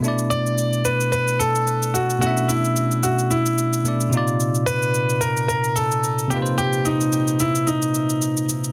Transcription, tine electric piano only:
0.00 2.16 B2 medium
0.00 2.17 A3 medium
0.00 2.18 D4 medium
0.06 2.19 E4 medium
0.06 2.20 D5 medium
2.19 3.81 B2 medium
2.19 3.82 A3 medium
2.23 2.29 C#4 soft
2.23 3.84 E4 medium
2.23 3.85 E5 medium
2.29 3.85 D4 medium
3.85 4.12 B2 soft
3.85 4.13 A3 soft
3.85 4.13 D4 soft
3.85 4.14 E4 soft
3.85 4.14 D5 medium
4.10 6.26 A#2 medium
4.10 6.25 C3 medium
4.10 6.27 D#4 medium
4.16 6.28 F4 medium
4.16 6.29 D5 medium
6.28 8.44 C3 medium
6.28 8.45 A#3 medium
6.28 8.46 D#4 medium
6.34 8.46 F4 medium
6.34 6.40 B4 medium
6.42 8.51 C5 medium

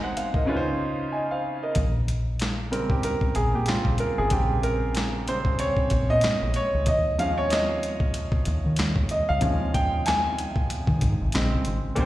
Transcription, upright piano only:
0.00 0.50 G#3 medium
0.00 0.48 D#4 medium
0.00 0.50 F#4 medium
0.00 0.36 A#4 medium
0.00 0.04 C5 loud
0.00 0.15 C5 medium
0.00 0.36 D#5 medium
0.00 0.16 F#5 medium
0.00 0.49 G#5 medium
0.17 0.34 C5 medium
0.17 0.34 F5 medium
0.36 0.66 A#4 medium
0.36 0.66 D#5 medium
0.46 1.51 C#3 medium
0.46 1.52 C#4 medium
0.46 1.53 D#4 medium
0.46 1.53 F4 medium
0.50 0.56 B4 medium
0.56 1.16 C5 medium
1.12 1.30 D#5 soft
1.12 1.30 G#5 medium
1.31 1.61 C5 medium
1.31 1.61 F5 medium
1.63 1.93 A#4 soft
1.63 1.93 D#5 medium
2.71 3.66 C#3 medium
2.71 3.67 G3 soft
2.71 3.67 C4 medium
2.71 2.91 A#4 medium
2.91 3.04 G4 medium
3.04 3.34 A#4 medium
3.36 3.55 G#4 medium
3.55 3.68 G4 medium
3.68 3.96 C#3 soft
3.68 3.96 G3 soft
3.68 3.97 C4 soft
3.68 4.00 F4 medium
4.00 4.19 A#4 medium
4.18 4.32 G#4 medium
4.31 5.23 C#3 soft
4.31 5.23 G3 soft
4.31 5.23 C4 medium
4.31 4.64 G4 medium
4.63 5.29 A#4 medium
5.28 5.56 C#3 soft
5.28 5.56 G3 soft
5.28 5.56 C4 medium
5.28 5.60 C5 medium
5.60 6.06 C#5 medium
6.10 6.56 D#5 medium
6.56 6.88 C#5 medium
6.88 7.20 D#5 medium
7.18 9.39 F3 soft
7.18 9.40 G#3 soft
7.18 9.40 C#4 medium
7.18 7.38 F5 medium
7.38 7.51 C#5 medium
7.51 8.42 D#5 medium
9.11 9.29 D#5 medium
9.29 9.75 F5 medium
9.41 11.29 F3 medium
9.41 11.29 G#3 soft
9.41 11.29 C#4 medium
9.74 9.81 G5 medium
10.06 10.66 G#5 medium
11.34 11.78 C#3 medium
11.34 11.78 G#3 medium
11.34 11.79 C4 medium
11.95 12.05 A#2 medium
11.95 12.05 A#3 medium
11.95 12.05 C#4 medium
11.95 12.05 G4 medium
12.00 12.05 C5 loud

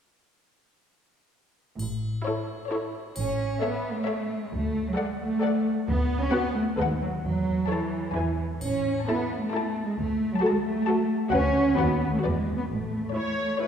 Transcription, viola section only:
2.24 2.58 E4 soft
2.71 3.05 E4 soft
3.61 3.95 A4 soft
4.07 4.40 A4 soft
4.97 5.31 A4 soft
5.42 5.75 A4 medium
6.32 6.66 F#4 medium
6.78 7.12 A4 soft
7.70 8.04 A4 soft
8.15 8.50 E4 soft
9.07 9.41 E4 soft
9.52 9.86 E4 soft
10.41 10.76 F#4 medium
10.87 11.21 F#4 medium
11.32 11.66 F#4 medium
11.77 12.11 F#4 medium
12.23 12.57 F#4 soft
13.15 13.50 E4 soft
13.62 13.68 E4 soft

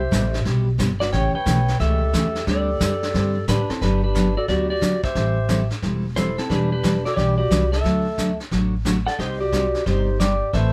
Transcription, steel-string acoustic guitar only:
0.11 0.23 C3 medium
0.11 0.23 G3 medium
0.11 0.24 B3 medium
0.11 0.24 E4 medium
0.11 0.24 G4 medium
0.45 0.67 C3 medium
0.45 0.67 G3 medium
0.45 0.67 B3 medium
0.45 0.67 E4 medium
0.45 0.68 G4 medium
0.78 0.90 C3 medium
0.78 0.90 G3 medium
0.78 0.91 B3 medium
0.78 0.91 E4 medium
0.78 0.91 G4 medium
1.12 1.34 C#3 medium
1.12 1.34 E3 medium
1.12 1.35 A3 medium
1.12 1.35 C#4 medium
1.12 1.35 G4 medium
1.45 1.57 C#3 medium
1.45 1.58 E3 medium
1.45 1.58 A3 medium
1.45 1.58 C#4 medium
1.45 1.58 G4 medium
1.79 2.01 C#3 medium
1.79 2.02 E3 medium
1.79 2.02 A3 medium
1.79 2.02 C#4 medium
1.79 2.02 G4 medium
2.13 2.25 C#3 medium
2.13 2.25 E3 medium
2.13 2.25 A3 medium
2.13 2.25 C#4 medium
2.13 2.25 G4 medium
2.47 2.69 D3 medium
2.47 2.69 G3 medium
2.47 2.69 C4 medium
2.47 2.69 D4 medium
2.47 2.69 G4 medium
2.80 2.92 D3 medium
2.80 2.92 G3 medium
2.80 2.92 C4 medium
2.80 2.92 D4 medium
2.80 2.92 G4 medium
3.14 3.36 D3 medium
3.14 3.36 G3 medium
3.14 3.36 C4 medium
3.14 3.36 D4 medium
3.14 3.36 G4 medium
3.48 3.59 D3 medium
3.48 3.59 G3 medium
3.48 3.60 C4 medium
3.48 3.60 D4 medium
3.48 3.60 G4 medium
3.81 4.03 D3 medium
3.81 4.03 F#3 medium
3.81 4.03 B3 medium
3.81 4.03 D4 medium
3.81 4.04 G4 medium
4.15 4.26 D3 medium
4.15 4.27 F#3 medium
4.15 4.27 B3 medium
4.15 4.27 D4 medium
4.15 4.27 G4 medium
4.48 4.70 D3 medium
4.48 4.70 F#3 medium
4.48 4.70 B3 medium
4.48 4.71 D4 medium
4.48 4.71 G4 medium
4.81 4.93 D3 medium
4.81 4.93 F#3 medium
4.81 4.93 B3 medium
4.81 4.94 D4 medium
4.81 4.94 G4 medium
5.15 5.37 E3 medium
5.15 5.37 G3 medium
5.15 5.37 C4 medium
5.15 5.38 E4 medium
5.15 5.38 A4 medium
5.49 5.61 E3 medium
5.49 5.61 G3 medium
5.49 5.61 C4 medium
5.49 5.61 E4 medium
5.49 5.61 A4 medium
5.82 6.04 E3 medium
5.82 6.05 G3 medium
5.82 6.05 C4 medium
5.82 6.05 E4 medium
5.82 6.05 A4 medium
6.16 6.28 E3 medium
6.16 6.28 G3 medium
6.16 6.28 C4 medium
6.16 6.28 E4 medium
6.16 6.28 A4 medium
6.49 6.72 E3 medium
6.49 6.72 G3 medium
6.49 6.72 D4 medium
6.49 6.72 E4 medium
6.49 6.72 B4 medium
6.83 6.95 E3 medium
6.83 6.95 G3 medium
6.83 6.95 D4 medium
6.83 6.95 E4 medium
6.83 6.95 B4 medium
7.16 7.39 E3 medium
7.16 7.39 G3 medium
7.16 7.39 D4 medium
7.16 7.39 E4 medium
7.16 7.39 B4 medium
7.50 7.62 E3 medium
7.50 7.62 G3 medium
7.50 7.63 D4 medium
7.50 7.63 E4 medium
7.50 7.63 B4 medium
7.84 8.06 D3 medium
7.84 8.06 F#3 medium
7.84 8.06 A3 medium
7.84 8.06 D4 medium
7.84 8.06 F#4 medium
8.18 8.30 D3 medium
8.18 8.30 F#3 medium
8.18 8.30 A3 medium
8.18 8.30 D4 medium
8.18 8.30 F#4 medium
8.51 8.73 D3 medium
8.51 8.73 F#3 medium
8.51 8.74 A3 medium
8.51 8.74 D4 medium
8.51 8.74 F#4 medium
8.85 8.97 D3 medium
8.85 8.97 F#3 medium
8.85 8.97 A3 medium
8.85 8.97 D4 medium
8.85 8.97 F#4 medium
9.19 9.41 C3 medium
9.19 9.41 G3 medium
9.19 9.41 C4 medium
9.19 9.41 D#4 medium
9.19 9.41 G4 medium
9.19 9.41 D5 medium
9.53 9.64 C3 medium
9.53 9.64 G3 medium
9.53 9.65 C4 medium
9.53 9.65 D#4 medium
9.53 9.65 G4 medium
9.53 9.65 D5 medium
9.86 10.08 C3 medium
9.86 10.08 G3 medium
9.86 10.08 C4 medium
9.86 10.09 D#4 medium
9.86 10.09 G4 medium
9.86 10.09 D5 medium
10.20 10.31 C3 medium
10.20 10.32 G3 medium
10.20 10.32 C4 medium
10.20 10.32 D#4 medium
10.20 10.32 G4 medium
10.20 10.32 D5 medium
10.53 10.73 E3 medium
10.53 10.73 A3 medium
10.53 10.73 C4 medium
10.53 10.73 E4 medium
10.53 10.73 B4 medium

